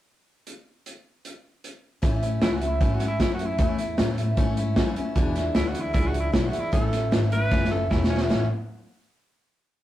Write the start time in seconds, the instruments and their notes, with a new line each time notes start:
0.47 closed hi-hat
0.86 closed hi-hat
1.25 closed hi-hat
1.64 closed hi-hat
2.02 upright bass A1, steel-string acoustic guitar A2 E3 A3 C#4 E4, kick, closed hi-hat
2.21 steel-string acoustic guitar A3 C#4 E4, closed hi-hat
2.41 upright bass C#2, steel-string acoustic guitar E3 A3 C#4 E4, tenor saxophone E4, snare, closed hi-hat
2.55 tenor saxophone F#4
2.60 steel-string acoustic guitar A3 C#4 E4, closed hi-hat
2.67 tenor saxophone E4
2.81 upright bass G#2, steel-string acoustic guitar A2 E3 A3 C#4 E4, tenor saxophone E4, kick, closed hi-hat
2.94 tenor saxophone F#4
3.00 steel-string acoustic guitar A3 C#4 E4, closed hi-hat
3.08 tenor saxophone E4
3.19 upright bass F#2, steel-string acoustic guitar E3 A3 C#4 E4, tenor saxophone E4, kick, snare, closed hi-hat
3.34 tenor saxophone F#4
3.39 steel-string acoustic guitar A3 C#4 E4, closed hi-hat
3.46 tenor saxophone E4
3.58 upright bass E2, steel-string acoustic guitar A2 E3 A3 C#4 E4, tenor saxophone E4, kick, closed hi-hat
3.78 steel-string acoustic guitar A3 C#4 E4, closed hi-hat
3.97 upright bass A2, steel-string acoustic guitar E3 A3 C#4 E4, snare, closed hi-hat
4.17 steel-string acoustic guitar A3 C#4 E4, closed hi-hat
4.37 upright bass G#2, steel-string acoustic guitar A2 E3 A3 C#4 E4, kick, closed hi-hat
4.57 steel-string acoustic guitar A3 C#4 E4, closed hi-hat
4.76 upright bass F#2, steel-string acoustic guitar E3 A3 C#4 E4, kick, snare, closed hi-hat
4.96 steel-string acoustic guitar A3 C#4 E4, muted upright bass stroke, closed hi-hat
5.15 upright bass E2, steel-string acoustic guitar E2 B2 E3 G#3 D4 E4, kick, closed hi-hat
5.35 steel-string acoustic guitar E3 G#3 D4 E4, snare, closed hi-hat
5.55 upright bass D2, steel-string acoustic guitar E3 G#3 D4 E4, tenor saxophone E4, snare, closed hi-hat
5.68 tenor saxophone F#4
5.74 steel-string acoustic guitar E3 G#3 D4 E4, closed hi-hat
5.81 tenor saxophone E4
5.93 upright bass C#2, steel-string acoustic guitar E2 B2 E3 G#3 D4 E4, tenor saxophone E4, kick, closed hi-hat
6.07 tenor saxophone F#4
6.13 steel-string acoustic guitar E3 G#3 D4 E4, closed hi-hat
6.20 tenor saxophone E4
6.32 upright bass B1, steel-string acoustic guitar E3 G#3 D4 E4, tenor saxophone E4, kick, snare, closed hi-hat
6.46 tenor saxophone F#4
6.51 steel-string acoustic guitar E3 G#3 D4 E4, muted upright bass stroke, closed hi-hat
6.60 tenor saxophone E4
6.72 upright bass A1, steel-string acoustic guitar A2 E3 A3 C#4 E4, tenor saxophone A4, kick, closed hi-hat
6.92 steel-string acoustic guitar A3 C#4 E4, snare, closed hi-hat
7.11 upright bass G#1, steel-string acoustic guitar E3 A3 C#4 E4, snare, closed hi-hat
7.31 steel-string acoustic guitar A3 C#4 E4, tenor saxophone B4, closed hi-hat
7.51 upright bass F#1, steel-string acoustic guitar A2 E3 A3 C#4 E4, kick, snare
7.65 snare
7.71 steel-string acoustic guitar A3 C#4 E4, tenor saxophone A4
7.90 upright bass E1, steel-string acoustic guitar E3 A3 C#4 E4, tenor saxophone E4, kick, snare
8.04 snare
8.10 steel-string acoustic guitar A3 C#4 E4, tenor saxophone C#4
8.17 snare
8.29 upright bass A1, steel-string acoustic guitar A2 E3 A3 C#4 E4, tenor saxophone C#4, snare